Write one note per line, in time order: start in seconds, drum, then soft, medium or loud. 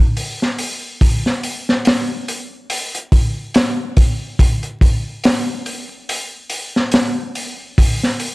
0.17 open hi-hat medium
0.42 snare soft
0.58 open hi-hat medium
1.01 kick loud
1.01 open hi-hat medium
1.26 snare soft
1.43 open hi-hat medium
1.69 snare soft
1.85 snare loud
1.85 open hi-hat medium
2.28 open hi-hat medium
2.70 open hi-hat medium
2.95 closed hi-hat soft
3.12 kick medium
3.12 open hi-hat medium
3.54 snare loud
3.54 open hi-hat medium
3.97 kick medium
3.97 open hi-hat medium
4.39 kick loud
4.39 open hi-hat medium
4.63 closed hi-hat soft
4.81 kick medium
4.81 open hi-hat medium
5.24 snare loud
5.24 open hi-hat medium
5.66 open hi-hat medium
6.09 open hi-hat medium
6.50 open hi-hat medium
6.76 snare soft
6.92 snare loud
6.92 open hi-hat medium
7.35 open hi-hat medium
7.78 kick medium
7.78 open hi-hat loud
8.03 snare soft
8.20 open hi-hat medium